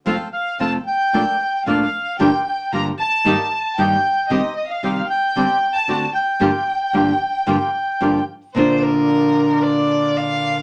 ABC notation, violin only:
X:1
M:4/4
L:1/16
Q:1/4=113
K:Gm
V:1 name="Violin"
f2 f2 a2 g6 f4 | g2 g2 b2 a6 g4 | e2 e f3 g4- g a3 g2- | g12- g2 z2 |
[K:Bb] c2 B6 d4 f4 |]